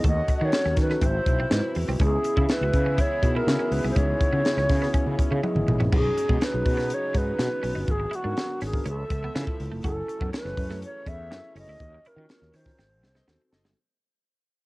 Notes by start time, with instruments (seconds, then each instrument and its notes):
0.04 fretless electric bass D#2, string section D#3 F#3 A3 C#4 F#4, clean electric guitar A3, horn section C#5 D#5 F#5, kick, closed hi-hat
0.08 alto flute D#5
0.28 muted clean electric guitar stroke, kick, closed hi-hat
0.37 fretless electric bass D#3, clean electric guitar B3, alto flute D#5
0.45 alto flute C#5
0.52 tine electric piano C#4 D#4 F#4 A4, snare, closed hi-hat
0.65 fretless electric bass D#2, clean electric guitar C#4, snare
0.77 fretless electric bass D#3, muted clean electric guitar stroke, kick, snare, closed hi-hat
0.82 alto flute B4
0.90 clean electric guitar B3, tine electric piano C#4 D#4 F#4 A4, snare
1.01 fretless electric bass G#1, string section C3 G#3 E4, clean electric guitar C4, horn section E4 C5 E5, kick, closed hi-hat
1.06 alto flute C5
1.26 fretless electric bass B1, muted clean electric guitar stroke, kick, closed hi-hat
1.40 clean electric guitar C4
1.50 fretless electric bass G#2, clean electric guitar B3, tine electric piano C4 E4 F#4 B4, snare, closed hi-hat
1.75 fretless electric bass E2, muted clean electric guitar stroke, open hi-hat
1.88 fretless electric bass C2, clean electric guitar C4
1.99 fretless electric bass C#2, string section C#3 E3 E4, tine electric piano B3 C#4 E4 G#4, horn section B3 G#4 E5, clean electric guitar C#4, alto flute G#4, kick, closed hi-hat
2.24 muted clean electric guitar stroke, closed hi-hat
2.37 fretless electric bass C#3, clean electric guitar E4, kick
2.49 alto flute B4, snare, closed hi-hat
2.61 fretless electric bass C#2, clean electric guitar F#4
2.73 fretless electric bass C#3, muted clean electric guitar stroke, kick, closed hi-hat
2.86 clean electric guitar C#4
2.98 clean electric guitar E4, alto flute C#5, kick, closed hi-hat
3.22 fretless electric bass B2, tine electric piano B3 D#4 E4 G#4, muted clean electric guitar stroke, kick, closed hi-hat
3.35 tine electric piano B3 D#4 E4 F#4, clean electric guitar E4, alto flute A#4
3.47 fretless electric bass C#3, tine electric piano B3 C#4 E4 G#4, snare, closed hi-hat
3.59 clean electric guitar C#4
3.71 fretless electric bass C#2, alto flute B4, muted clean electric guitar stroke, open hi-hat
3.84 fretless electric bass C2, clean electric guitar B3
3.91 alto flute C5
3.96 fretless electric bass C#2, clean electric guitar C#4, string section C#4, alto flute C#5, kick, closed hi-hat
4.21 muted clean electric guitar stroke, kick, closed hi-hat
4.33 fretless electric bass C#3, clean electric guitar B3
4.45 tine electric piano B3 C#4 E4 G#4, snare, closed hi-hat
4.57 fretless electric bass C#2, clean electric guitar C#4, snare
4.69 fretless electric bass C#3, muted clean electric guitar stroke, kick, snare, open hi-hat
4.82 tine electric piano B3 C#4 E4 G#4, clean electric guitar B3, snare
4.94 clean electric guitar C#4, kick, closed hi-hat
5.06 fretless electric bass C#3
5.19 tine electric piano G#5, muted clean electric guitar stroke, kick, closed hi-hat
5.31 fretless electric bass C#3, clean electric guitar C#4
5.43 clean electric guitar B3, tine electric piano B3 E4 G#4 D#5 E5, high tom
5.55 fretless electric bass G#1, mid tom
5.68 fretless electric bass A1, muted clean electric guitar stroke, mid tom
5.80 fretless electric bass A#1, clean electric guitar C#4, floor tom
5.91 fretless electric bass B1, string section C#3 F#3 G#3 B3 D#4, clean electric guitar B3, tine electric piano C#4 D#4 F#4 G#4, alto flute G#4, kick, crash
6.17 muted clean electric guitar stroke, closed hi-hat
6.29 fretless electric bass B2, clean electric guitar G#3, kick
6.41 clean electric guitar C#4, alto flute B4, snare, closed hi-hat
6.52 fretless electric bass B1, tine electric piano C#4 D#4 F#4 G#4, muted clean electric guitar stroke
6.66 fretless electric bass B2, kick, open hi-hat
6.77 clean electric guitar B3, snare
6.90 alto flute C#5, closed hi-hat
7.14 fretless electric bass G#2, tine electric piano C#4 D#4 F#4 G#4, clean electric guitar C#4, alto flute B4, kick, closed hi-hat
7.39 fretless electric bass B2, muted clean electric guitar stroke, snare, closed hi-hat
7.63 fretless electric bass B1, clean electric guitar C#4, tine electric piano C#4 D#4 F#4 B4, open hi-hat
7.75 fretless electric bass G1, clean electric guitar D#4
7.88 fretless electric bass G#1, string section D3 F#3 F#4, alto flute G#4, kick, closed hi-hat
8.00 muted clean electric guitar stroke
8.11 clean electric guitar E4, closed hi-hat
8.15 alto flute F#4
8.23 fretless electric bass G#2, tine electric piano B3 D4 F#4 A#4, clean electric guitar D4
8.37 snare, closed hi-hat
8.61 fretless electric bass G#1, clean electric guitar C#4, alto flute G#4, snare, open hi-hat
8.73 tine electric piano B3 D4 F#4 A#4, kick
8.86 fretless electric bass C#2, string section C#3 F3 A3 B3 E5, clean electric guitar C#4, alto flute A4, closed hi-hat
9.10 fretless electric bass C#2, muted clean electric guitar stroke, kick, closed hi-hat
9.24 clean electric guitar B3
9.34 fretless electric bass C#3, tine electric piano B3 E4 F4 A4, clean electric guitar B3, snare, closed hi-hat
9.47 muted clean electric guitar stroke, kick
9.60 fretless electric bass C#2, open hi-hat
9.71 fretless electric bass F1, clean electric guitar A3
9.84 fretless electric bass F#1, string section E3 F#3 C#4, tine electric piano C#4 E4 A4 G#5, clean electric guitar F#4, alto flute A4, kick, closed hi-hat
10.08 muted clean electric guitar stroke, closed hi-hat
10.21 fretless electric bass F#2, clean electric guitar B3, kick
10.33 clean electric guitar C#4, alto flute B4, snare, closed hi-hat
10.44 fretless electric bass F#1, tine electric piano C#4 E4 G#4 B4, muted clean electric guitar stroke, snare
10.57 fretless electric bass F#2, kick, open hi-hat
10.70 clean electric guitar A3, snare
10.82 alto flute C#5, closed hi-hat
11.05 fretless electric bass E2, tine electric piano C#4 E4 G#4 A4, clean electric guitar C#4, alto flute E5, kick, closed hi-hat
11.31 fretless electric bass F#2, muted clean electric guitar stroke, snare, closed hi-hat
11.54 fretless electric bass F#1, tine electric piano C#4 E4 G#4 A4, clean electric guitar C#4, open hi-hat
11.58 alto flute D#5
11.67 fretless electric bass D2, clean electric guitar E4
11.80 fretless electric bass D#2, string section D#3 A#3, kick, closed hi-hat
11.95 muted clean electric guitar stroke
12.05 clean electric guitar E4, alto flute A#4, closed hi-hat
12.16 fretless electric bass D#3, tine electric piano C#4 F4 F#4 A#4, clean electric guitar D#4
12.29 snare, closed hi-hat
12.42 fretless electric bass D#2, snare
12.53 fretless electric bass D#3, clean electric guitar C#4, alto flute C5, snare, open hi-hat
12.65 tine electric piano C#4 F4 F#4 A#4, kick, snare
12.79 fretless electric bass G#1, string section G#3 A3 C4, clean electric guitar C4, snare
13.03 fretless electric bass C2, muted clean electric guitar stroke, snare
13.14 clean electric guitar B3, horn section A4 C5 D#5, snare
13.28 fretless electric bass D#2, clean electric guitar B3, tine electric piano C4 D#4 F#4 A4, snare
13.42 muted clean electric guitar stroke
13.51 fretless electric bass F#1, horn section A4 C5 D#5, snare
13.64 fretless electric bass G1, clean electric guitar G#3, snare